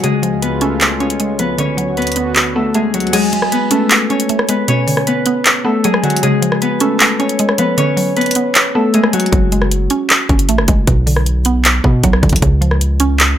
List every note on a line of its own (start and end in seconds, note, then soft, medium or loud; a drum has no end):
0.00 1.57 C#2 medium
0.00 1.57 C#3 medium
0.00 1.00 C#3 medium
0.00 1.57 G#3 medium
0.00 0.43 B3 medium
0.00 1.01 C#4 medium
0.00 1.57 F4 medium
0.00 2.28 F#4 medium
0.00 0.67 G#4 loud
0.00 0.42 B4 medium
0.00 0.40 C#5 loud
0.00 closed hi-hat medium
0.04 1.63 G#3 medium
0.23 1.20 F3 medium
0.23 closed hi-hat medium
0.42 1.40 B3 medium
0.42 1.39 B4 medium
0.42 closed hi-hat medium
0.61 2.56 A3 medium
0.61 0.99 C#4 loud
0.61 2.55 A4 medium
0.61 closed hi-hat medium
0.81 clap loud
0.81 closed hi-hat medium
1.00 1.58 C#4 medium
1.00 1.59 C#4 medium
1.00 1.58 C#5 medium
1.00 closed hi-hat soft
1.10 closed hi-hat medium
1.20 1.59 G#3 medium
1.20 closed hi-hat medium
1.39 1.59 F3 medium
1.39 1.98 B3 medium
1.39 1.97 B4 medium
1.39 closed hi-hat medium
1.58 3.12 D2 medium
1.58 2.55 D3 medium
1.58 3.12 D3 medium
1.58 3.12 B3 medium
1.58 4.11 C#4 medium
1.58 3.12 F#4 medium
1.58 3.50 C#5 loud
1.58 closed hi-hat medium
1.77 2.74 F#3 medium
1.77 closed hi-hat medium
1.97 3.52 B3 medium
1.97 3.51 B4 medium
1.97 closed hi-hat soft
2.02 closed hi-hat medium
2.07 closed hi-hat medium
2.12 closed hi-hat medium
2.16 2.55 B3 medium
2.16 closed hi-hat medium
2.36 clap loud
2.36 closed hi-hat medium
2.56 2.81 A3 medium
2.56 3.14 B3 medium
2.56 2.81 A4 medium
2.74 3.13 G#3 medium
2.74 3.13 A3 loud
2.74 3.13 G#4 medium
2.74 closed hi-hat medium
2.94 3.12 F#3 medium
2.94 3.18 F#3 medium
2.94 5.38 F#4 medium
2.94 closed hi-hat medium
3.00 closed hi-hat medium
3.07 closed hi-hat soft
3.13 4.10 F#3 medium
3.13 4.73 G#3 medium
3.13 3.77 G#4 loud
3.13 closed hi-hat medium
3.13 crash loud
3.33 4.30 G#3 medium
3.33 closed hi-hat medium
3.42 cross-stick medium
3.52 4.49 B3 medium
3.52 4.49 B4 medium
3.52 closed hi-hat medium
3.71 5.65 A3 medium
3.71 4.09 C#4 loud
3.71 5.65 A4 medium
3.71 closed hi-hat medium
3.91 clap loud
3.91 closed hi-hat medium
4.10 4.68 C#4 medium
4.10 4.69 C#4 medium
4.10 4.68 C#5 medium
4.10 closed hi-hat soft
4.20 closed hi-hat medium
4.29 4.68 A3 medium
4.29 closed hi-hat medium
4.39 cross-stick medium
4.49 4.68 G#3 medium
4.49 5.07 B3 medium
4.49 5.07 B4 medium
4.49 closed hi-hat medium
4.68 5.65 B2 medium
4.68 7.20 C#4 medium
4.68 6.59 C#5 loud
4.68 closed hi-hat medium
4.87 5.84 D3 medium
4.87 open hi-hat medium
4.97 cross-stick medium
5.07 6.62 B3 medium
5.07 6.61 B4 medium
5.07 closed hi-hat medium
5.26 5.63 B3 loud
5.26 closed hi-hat medium
5.46 clap loud
5.46 closed hi-hat medium
5.65 5.90 A3 medium
5.65 6.23 B3 medium
5.65 5.90 A4 medium
5.84 6.23 F#3 loud
5.84 6.22 G#3 medium
5.84 6.22 G#4 medium
5.84 closed hi-hat medium
5.94 cross-stick medium
6.03 6.23 D3 medium
6.03 6.28 F#3 medium
6.03 8.47 F#4 medium
6.03 closed hi-hat medium
6.10 closed hi-hat medium
6.17 closed hi-hat medium
6.23 7.20 C#3 medium
6.23 7.83 G#3 medium
6.23 6.87 G#4 loud
6.23 closed hi-hat medium
6.42 7.39 F3 medium
6.42 closed hi-hat medium
6.52 cross-stick medium
6.62 7.59 B3 medium
6.62 7.58 B4 medium
6.62 closed hi-hat medium
6.80 8.75 A3 medium
6.80 7.19 C#4 loud
6.80 8.74 A4 medium
6.80 closed hi-hat medium
7.00 clap loud
7.00 closed hi-hat medium
7.19 7.78 C#4 medium
7.19 7.77 C#5 medium
7.19 closed hi-hat soft
7.29 closed hi-hat medium
7.39 7.78 G#3 loud
7.39 closed hi-hat medium
7.49 cross-stick medium
7.58 7.78 F3 medium
7.58 8.17 B3 medium
7.58 8.16 B4 medium
7.58 closed hi-hat medium
7.77 8.74 D3 medium
7.77 10.68 C#4 medium
7.77 9.69 C#5 loud
7.77 closed hi-hat medium
7.97 8.94 F#3 medium
7.97 open hi-hat medium
8.17 11.28 B3 medium
8.17 10.21 B4 medium
8.17 closed hi-hat soft
8.21 closed hi-hat medium
8.26 closed hi-hat medium
8.31 closed hi-hat medium
8.35 8.74 B3 medium
8.35 closed hi-hat medium
8.55 clap loud
8.55 closed hi-hat medium
8.75 9.00 A3 medium
8.75 9.33 B3 medium
8.75 9.00 A4 medium
8.94 9.38 G#3 medium
8.94 9.33 A3 loud
8.94 11.21 G#4 medium
8.94 closed hi-hat medium
9.04 cross-stick medium
9.13 9.31 F#3 medium
9.13 9.38 F#3 medium
9.13 11.57 F#4 medium
9.13 closed hi-hat medium
9.20 closed hi-hat medium
9.26 closed hi-hat soft
9.32 9.88 F#1 loud
9.32 10.29 F#3 medium
9.32 kick loud
9.32 closed hi-hat medium
9.52 10.49 G#3 medium
9.52 closed hi-hat medium
9.62 cross-stick medium
9.71 closed hi-hat medium
9.90 10.28 C#4 loud
9.90 closed hi-hat medium
10.10 clap loud
10.10 closed hi-hat medium
10.29 10.50 F#1 loud
10.29 10.88 C#4 medium
10.29 kick medium
10.29 closed hi-hat soft
10.39 closed hi-hat medium
10.49 10.60 A1 loud
10.49 10.88 A3 medium
10.49 closed hi-hat medium
10.58 10.68 F#1 loud
10.58 cross-stick medium
10.68 10.87 F#1 loud
10.68 10.88 G#3 medium
10.68 kick loud
10.68 closed hi-hat medium
10.87 11.80 B1 loud
10.87 11.84 B2 medium
10.87 kick loud
10.87 closed hi-hat medium
11.07 12.04 D3 medium
11.07 open hi-hat medium
11.16 cross-stick medium
11.26 closed hi-hat medium
11.45 11.83 B3 loud
11.45 closed hi-hat medium
11.65 clap loud
11.65 closed hi-hat medium
11.84 12.03 B2 loud
11.84 12.42 B3 medium
11.84 kick medium
12.04 12.22 B1 loud
12.04 12.43 F#3 loud
12.04 kick loud
12.04 closed hi-hat medium
12.13 cross-stick medium
12.23 12.32 B1 loud
12.23 12.42 D3 medium
12.23 kick loud
12.23 closed hi-hat medium
12.29 12.42 B1 loud
12.29 kick medium
12.29 closed hi-hat medium
12.36 closed hi-hat medium
12.42 13.35 C#2 loud
12.42 13.38 C#3 medium
12.42 kick loud
12.42 closed hi-hat medium
12.61 13.38 F3 medium
12.61 closed hi-hat medium
12.71 cross-stick medium
12.81 closed hi-hat medium
13.00 13.38 C#4 loud
13.00 closed hi-hat medium
13.20 clap loud
13.20 closed hi-hat medium